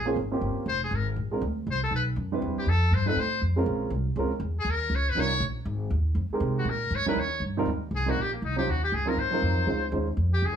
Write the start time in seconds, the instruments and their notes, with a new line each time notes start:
Already playing: upright bass A#1
0.06 grand piano A#3 C4 C#4 F4 G#4
0.16 upright bass G#1
0.32 grand piano A#3 C4 C#4 F4 G4
0.41 upright bass G1
0.56 muted upright bass stroke
0.66 upright bass F1, muted trumpet C5
0.84 muted trumpet G#4
0.91 upright bass G#1
0.96 muted trumpet A#4
1.16 upright bass A#1
1.31 grand piano G#3 C4 D4 F4 A#4
1.41 upright bass D2
1.67 upright bass C2
1.71 muted trumpet C5
1.83 muted trumpet A4
1.91 upright bass B1
1.96 muted trumpet B4
2.16 upright bass F#2
2.32 grand piano G3 C4 D4 E4 B4
2.42 upright bass E2
2.56 muted trumpet G4, muted upright bass stroke
2.66 upright bass F2, muted trumpet A4
2.91 upright bass G2, muted trumpet C5
3.06 grand piano G3 C4 D#4 F4 A4, muted trumpet B4
3.16 upright bass A2, muted trumpet C5
3.42 upright bass F2
3.56 grand piano G#3 C4 C#4 F4 A#4
3.66 upright bass A#1
3.90 upright bass C2
4.16 upright bass C#2, grand piano G#3 C4 C#4 F4 A#4
4.31 muted upright bass stroke
4.40 upright bass E2
4.59 muted trumpet G#4
4.65 upright bass D#2
4.71 muted trumpet A#4
4.90 upright bass C#2
4.95 muted trumpet C#5
5.10 muted trumpet B4
5.15 upright bass C2, grand piano G3 C#4 D#4 F4 A#4
5.20 muted trumpet C#5
5.40 upright bass A#1
5.65 upright bass G#1
5.90 upright bass D#2
6.15 upright bass F2
6.30 grand piano G#3 C4 D#4 G4 A#4, muted upright bass stroke
6.40 upright bass C3
6.59 muted trumpet F#4
6.65 upright bass A#2
6.70 muted trumpet A#4
6.90 upright bass G#2
6.95 muted trumpet C#5
7.05 grand piano G3 C#4 D#4 E4 A#4, muted trumpet B4, muted upright bass stroke
7.15 upright bass D#2
7.19 muted trumpet C#5
7.40 upright bass G2
7.57 grand piano G#2 G3 C4 D#4 F4 A#4
7.65 upright bass D#2
7.91 upright bass C2
7.95 muted trumpet G#4
8.06 grand piano G3 C4 D#4 F4 A#4, muted trumpet F#4
8.17 upright bass A#1
8.21 muted trumpet G4
8.33 muted trumpet A#3
8.42 upright bass C2, muted trumpet D#4
8.56 grand piano F#3 C#4 D#4 F4 C5, muted trumpet G4
8.67 upright bass D#2, muted trumpet F#4
8.84 muted trumpet G4
8.92 upright bass C#2, muted trumpet G#4
9.06 grand piano F#3 C4 D#4 F4 A#4, muted trumpet A#4
9.17 upright bass G#2, muted trumpet C5
9.31 grand piano F#3 C4 D#4 F4 A#4
9.42 upright bass F2
9.66 upright bass C#2, grand piano G#3 C#4 D#4 F4 C5
9.92 upright bass D#2, grand piano G#3 C#4 D#4 F4 C5
10.17 upright bass F2
10.34 muted trumpet G4
10.42 upright bass C#2, muted trumpet G#4
10.52 upright bass C2